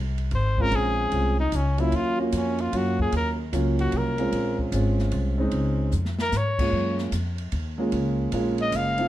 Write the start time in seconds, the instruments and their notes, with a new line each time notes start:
Already playing: upright bass C2
0.18 ride
0.31 upright bass G#1, kick, ride
0.35 trumpet C5
0.58 grand piano G#3 C4 C#4 F4, trumpet A#4, kick
0.71 upright bass A#1, ride
0.75 trumpet G#4
1.12 upright bass C2, grand piano G#3 C4 C#4 F4, kick, ride
1.40 trumpet D#4
1.52 upright bass C#2, trumpet C#4, kick, hi-hat pedal, ride
1.78 grand piano F#3 A#3 C#4 F4, trumpet E4, ride
1.92 upright bass D#2, trumpet F4, kick, ride
2.18 grand piano A#3 C#4 F4 F#4, trumpet A#3
2.32 upright bass F2, trumpet C#4, kick, hi-hat pedal, ride
2.58 trumpet F4, ride
2.72 upright bass F#2, grand piano F#3 A#3 C#4 F4, kick, ride
2.77 trumpet F#4
2.99 trumpet G#4, kick
3.12 upright bass D#2, kick, ride
3.16 trumpet A#4
3.53 upright bass C#2, grand piano F#3 A#3 C#4 F4, kick, hi-hat pedal, ride
3.79 trumpet F#4, ride
3.92 upright bass C2, kick, ride
3.97 trumpet A#4
4.18 grand piano G#3 C4 C#4 F4, ride
4.32 upright bass A#1, kick, ride
4.59 kick
4.72 upright bass G#1, grand piano G#3 C4 C#4 F4, kick, hi-hat pedal, ride
4.99 snare
5.11 upright bass C2, kick, ride
5.38 grand piano G#3 C4 C#4 D#4
5.51 upright bass C#2, kick, ride
5.91 upright bass F2, hi-hat pedal
6.05 snare
6.19 trumpet A#4, snare
6.32 upright bass G#2, snare, hi-hat pedal
6.37 trumpet C#5
6.59 grand piano G#3 A#3 C#4 F4, kick, crash
6.72 upright bass F#2, kick
6.98 snare
7.12 upright bass F2, kick, hi-hat pedal, ride
7.38 ride
7.52 upright bass D#2, kick, ride
7.78 grand piano G#3 A#3 C#4 F4
7.92 upright bass C#2, kick, ride
8.32 upright bass A#1, grand piano G#3 A#3 C#4 F4, kick, ride
8.58 trumpet D#5, ride
8.72 upright bass F#1, trumpet F5, kick, hi-hat pedal, ride
8.98 grand piano A3 C4 D#4 F4, ride